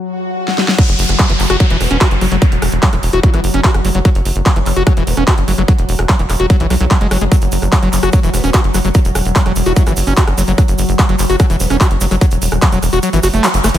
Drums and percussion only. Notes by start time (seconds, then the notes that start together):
0.48 snare
0.58 snare
0.68 snare
0.78 kick, closed hi-hat, crash
0.89 closed hi-hat
0.99 open hi-hat
1.09 cross-stick, closed hi-hat
1.19 kick, clap, closed hi-hat
1.30 closed hi-hat
1.40 clap, open hi-hat
1.50 cross-stick, closed hi-hat
1.60 kick, closed hi-hat
1.70 closed hi-hat
1.81 cross-stick, open hi-hat
1.91 closed hi-hat
2.01 kick, clap, closed hi-hat
2.11 closed hi-hat
2.21 cross-stick, open hi-hat
2.32 closed hi-hat
2.42 kick, closed hi-hat
2.52 closed hi-hat
2.62 cross-stick, open hi-hat
2.72 closed hi-hat
2.83 kick, clap, closed hi-hat
2.93 cross-stick, closed hi-hat
3.03 open hi-hat
3.13 closed hi-hat
3.23 kick, closed hi-hat
3.34 cross-stick, closed hi-hat
3.44 open hi-hat
3.54 closed hi-hat
3.64 kick, clap, closed hi-hat
3.74 cross-stick, closed hi-hat
3.85 open hi-hat
3.95 closed hi-hat
4.05 kick, cross-stick, closed hi-hat
4.15 closed hi-hat
4.25 open hi-hat
4.36 closed hi-hat
4.46 kick, cross-stick, clap, closed hi-hat
4.56 closed hi-hat
4.66 clap, open hi-hat
4.76 closed hi-hat
4.87 kick, cross-stick, closed hi-hat
4.97 closed hi-hat
5.07 open hi-hat
5.17 cross-stick, closed hi-hat
5.27 kick, clap, closed hi-hat
5.38 closed hi-hat
5.48 open hi-hat
5.58 cross-stick, closed hi-hat
5.68 kick, closed hi-hat
5.78 closed hi-hat
5.89 open hi-hat
5.99 cross-stick, closed hi-hat
6.09 kick, clap, closed hi-hat
6.19 closed hi-hat
6.30 cross-stick, clap, open hi-hat
6.40 closed hi-hat
6.50 kick, closed hi-hat
6.60 closed hi-hat
6.70 cross-stick, open hi-hat
6.81 closed hi-hat
6.91 kick, clap, closed hi-hat
7.01 closed hi-hat
7.11 cross-stick, open hi-hat
7.21 closed hi-hat
7.32 kick, closed hi-hat, shaker
7.41 closed hi-hat, shaker
7.52 open hi-hat, shaker
7.62 cross-stick, closed hi-hat, shaker
7.72 kick, clap, closed hi-hat, shaker
7.83 closed hi-hat
7.93 clap, open hi-hat, shaker
8.02 cross-stick, closed hi-hat, shaker
8.12 kick, closed hi-hat, shaker
8.23 closed hi-hat, shaker
8.34 cross-stick, open hi-hat, shaker
8.44 closed hi-hat, shaker
8.54 kick, clap, closed hi-hat, shaker
8.64 closed hi-hat
8.74 cross-stick, open hi-hat, shaker
8.85 closed hi-hat, shaker
8.94 kick, closed hi-hat, shaker
9.05 closed hi-hat, shaker
9.15 cross-stick, open hi-hat, shaker
9.25 closed hi-hat, shaker
9.36 kick, clap, closed hi-hat, shaker
9.46 cross-stick, closed hi-hat
9.56 open hi-hat, shaker
9.66 closed hi-hat, shaker
9.76 kick, closed hi-hat, shaker
9.87 cross-stick, closed hi-hat, shaker
9.96 open hi-hat, shaker
10.07 closed hi-hat, shaker
10.17 kick, clap, closed hi-hat, shaker
10.27 cross-stick, closed hi-hat
10.38 open hi-hat, shaker
10.47 closed hi-hat, shaker
10.58 kick, cross-stick, closed hi-hat, shaker
10.68 closed hi-hat, shaker
10.78 open hi-hat, shaker
10.89 closed hi-hat, shaker
10.99 kick, cross-stick, clap, closed hi-hat, shaker
11.09 closed hi-hat
11.19 clap, open hi-hat, shaker
11.30 closed hi-hat, shaker
11.39 kick, cross-stick, closed hi-hat, shaker
11.50 closed hi-hat, shaker
11.60 open hi-hat, shaker
11.70 cross-stick, closed hi-hat, shaker
11.81 kick, clap, closed hi-hat, shaker
11.91 closed hi-hat
12.01 open hi-hat, shaker
12.11 cross-stick, closed hi-hat, shaker
12.21 kick, closed hi-hat, shaker
12.31 closed hi-hat, shaker
12.42 open hi-hat, shaker
12.52 cross-stick, closed hi-hat, shaker
12.62 kick, clap, closed hi-hat, shaker
12.72 closed hi-hat, shaker
12.83 cross-stick, open hi-hat, shaker
12.93 closed hi-hat, shaker
13.03 closed hi-hat, shaker
13.13 closed hi-hat, shaker
13.23 cross-stick, open hi-hat, shaker
13.34 closed hi-hat, shaker
13.44 clap, closed hi-hat, shaker
13.54 closed hi-hat, shaker
13.64 cross-stick, closed hi-hat, open hi-hat, shaker
13.69 closed hi-hat
13.74 closed hi-hat, shaker